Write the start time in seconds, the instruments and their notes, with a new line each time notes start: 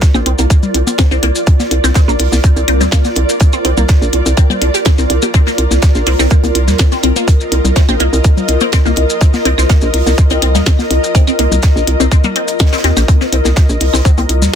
Already playing: ambient pad F4 A#4 D5
0.01 kick, snare, closed hi-hat, maracas
0.14 fm bass A#1, synth arpeggio sound C4, high conga, claves, maracas
0.26 fm bass C2, synth arpeggio sound C4, closed hi-hat
0.38 fm bass C2, synth arpeggio sound A#3, closed hi-hat, maracas
0.50 kick, closed hi-hat, maracas
0.63 low conga, maracas
0.74 fm bass C2, closed hi-hat
0.87 closed hi-hat, high conga, maracas
0.98 synth arpeggio sound C4, kick, snare, closed hi-hat, claves, maracas
1.11 fm bass C2, synth arpeggio sound C4, maracas
1.23 fm bass C2, synth arpeggio sound A#3, closed hi-hat
1.35 maracas
1.47 kick, closed hi-hat, maracas
1.59 snare, high conga, maracas
1.71 fm bass C2, closed hi-hat
1.84 fm bass C2, synth arpeggio sound C4, snare, claves, maracas
1.94 synth arpeggio sound C4, kick, snare, closed hi-hat, maracas
2.08 fm bass A#1, synth arpeggio sound A#3, maracas
2.19 fm bass C2, closed hi-hat, open hi-hat
2.32 fm bass C2, snare, high conga, maracas
2.44 kick, closed hi-hat, maracas
2.56 fm bass C2, closed hi-hat, maracas
2.68 fm bass C2, synth arpeggio sound C4, closed hi-hat, claves
2.80 fm bass D#2, synth arpeggio sound C4, snare, low conga, maracas
2.91 synth arpeggio sound A#3, kick, snare, closed hi-hat, maracas
3.04 snare, high conga, maracas
3.15 fm bass C2, closed hi-hat
3.29 maracas
3.40 kick, closed hi-hat, maracas
3.53 synth arpeggio sound C4, claves, maracas
3.65 fm bass C2, synth arpeggio sound C4, closed hi-hat
3.77 fm bass C2, synth arpeggio sound A#3, high conga, low conga, maracas
3.89 kick, snare, closed hi-hat, maracas
4.02 fm bass A#1, maracas
4.13 fm bass C2, closed hi-hat
4.26 fm bass C2, closed hi-hat, maracas
4.37 synth arpeggio sound C4, kick, closed hi-hat, claves, maracas
4.50 synth arpeggio sound C4, high conga, low conga, maracas
4.62 fm bass C2, synth arpeggio sound D4, closed hi-hat
4.74 synth arpeggio sound G4, closed hi-hat, maracas
4.85 synth arpeggio sound C4, kick, snare, closed hi-hat, maracas
4.98 fm bass C2, synth arpeggio sound C4, maracas
5.10 fm bass C2, closed hi-hat
5.22 synth arpeggio sound G4, high conga, claves, maracas
5.34 synth arpeggio sound C4, kick, closed hi-hat, claves, maracas
5.46 synth arpeggio sound A#3, snare, maracas
5.58 fm bass C2, closed hi-hat
5.71 fm bass C2, snare, high conga, maracas
5.82 kick, snare, closed hi-hat, maracas
5.95 fm bass A#1, maracas
6.06 fm bass C2, synth arpeggio sound C4, closed hi-hat, open hi-hat
6.19 fm bass C2, synth arpeggio sound C4, snare, claves, maracas
6.30 synth arpeggio sound A#3, kick, closed hi-hat, maracas
6.40 fm bass C2, ambient pad D#5, closed hi-hat, high conga
6.44 maracas
6.55 fm bass C2, closed hi-hat
6.67 fm bass D#2, snare, low conga, maracas
6.78 kick, snare, closed hi-hat, maracas
6.92 synth arpeggio sound C4, snare, maracas
7.03 fm bass C2, synth arpeggio sound C4, closed hi-hat, claves
7.16 synth arpeggio sound A#3, high conga, maracas
7.28 kick, closed hi-hat, maracas
7.41 maracas
7.52 fm bass C2, closed hi-hat
7.64 fm bass C2, low conga, maracas
7.76 synth arpeggio sound C4, kick, snare, closed hi-hat, maracas
7.89 fm bass A#1, synth arpeggio sound C4, high conga, claves, maracas
8.00 fm bass C2, synth arpeggio sound A#3, closed hi-hat
8.13 fm bass C2, closed hi-hat, maracas
8.24 kick, closed hi-hat, maracas
8.37 low conga, maracas
8.48 fm bass C2, closed hi-hat
8.61 synth arpeggio sound C4, closed hi-hat, high conga, maracas
8.72 synth arpeggio sound C4, kick, snare, closed hi-hat, claves, maracas
8.85 fm bass C2, synth arpeggio sound A#3, maracas
8.96 fm bass C2, closed hi-hat
9.10 maracas
9.21 kick, closed hi-hat, maracas
9.33 snare, high conga, maracas
9.45 fm bass C2, synth arpeggio sound C4, closed hi-hat
9.57 fm bass C2, synth arpeggio sound C4, snare, claves, maracas
9.69 synth arpeggio sound A#3, kick, snare, closed hi-hat, maracas
9.81 fm bass A#1, maracas
9.94 fm bass C2, closed hi-hat, open hi-hat
10.06 fm bass C2, snare, high conga, maracas
10.18 kick, closed hi-hat, maracas
10.30 fm bass C2, synth arpeggio sound C4, closed hi-hat, maracas
10.42 fm bass C2, synth arpeggio sound C4, closed hi-hat, claves
10.55 fm bass D#2, synth arpeggio sound A#3, snare, low conga, maracas
10.66 kick, snare, closed hi-hat, maracas
10.79 snare, high conga, maracas
10.91 fm bass C2, closed hi-hat
11.04 maracas
11.15 synth arpeggio sound C4, kick, closed hi-hat, maracas
11.27 synth arpeggio sound C4, claves, maracas
11.39 fm bass C2, synth arpeggio sound A#3, closed hi-hat
11.52 fm bass C2, high conga, low conga, maracas
11.62 kick, snare, closed hi-hat, maracas
11.76 fm bass A#1, maracas
11.87 fm bass C2, closed hi-hat
12.00 fm bass C2, synth arpeggio sound C4, closed hi-hat, maracas
12.11 synth arpeggio sound C4, kick, closed hi-hat, claves, maracas
12.24 synth arpeggio sound A#3, high conga, low conga, maracas
12.36 synth arpeggio sound C4, closed hi-hat
12.48 closed hi-hat, maracas
12.59 kick, snare, closed hi-hat, maracas
12.66 snare, closed hi-hat
12.73 synth arpeggio sound C4, snare, closed hi-hat, maracas
12.78 snare, closed hi-hat
12.84 fm bass D#2, synth arpeggio sound C4, snare, closed hi-hat
12.97 fm bass A#1, synth arpeggio sound G4, snare, closed hi-hat, high conga, claves, maracas
13.08 synth arpeggio sound C4, kick, closed hi-hat, claves, maracas
13.21 synth arpeggio sound C4, snare, maracas
13.32 fm bass C2, synth arpeggio sound C4, closed hi-hat
13.44 fm bass C2, snare, high conga, maracas
13.56 kick, snare, closed hi-hat, maracas
13.69 fm bass A#1, maracas
13.80 fm bass C2, closed hi-hat, open hi-hat
13.93 fm bass C2, synth arpeggio sound C4, snare, claves, maracas
14.05 synth arpeggio sound C4, kick, closed hi-hat, maracas
14.14 fm bass C2, synth arpeggio sound C4, ambient pad D5, high conga, maracas
14.19 closed hi-hat
14.29 fm bass C2, closed hi-hat
14.42 fm bass D#2, snare, low conga, maracas